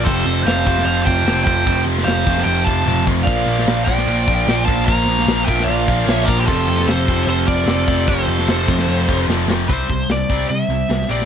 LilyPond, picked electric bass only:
\new Staff \with { instrumentName = "Picked electric bass" } { \clef bass \time 4/4 \key f \major \tempo 4 = 150 f,,8 f,,8 f,,8 f,,8 f,,8 f,,8 f,,8 f,,8 | f,,8 f,,8 f,,8 f,,8 f,,8 f,,8 f,,8 f,,8 | bes,,8 bes,,8 bes,,8 bes,,8 bes,,8 bes,,8 bes,,8 bes,,8 | bes,,8 bes,,8 bes,,8 bes,,8 bes,,8 bes,,8 bes,,8 bes,,8 |
f,,8 f,,8 f,,8 f,,8 f,,8 f,,8 f,,8 f,,8 | f,,8 f,,8 f,,8 f,,8 f,,8 f,,8 f,,8 f,,8 | c,8 c,8 c,8 c,8 c8 c,8 c,8 bes,,8 | }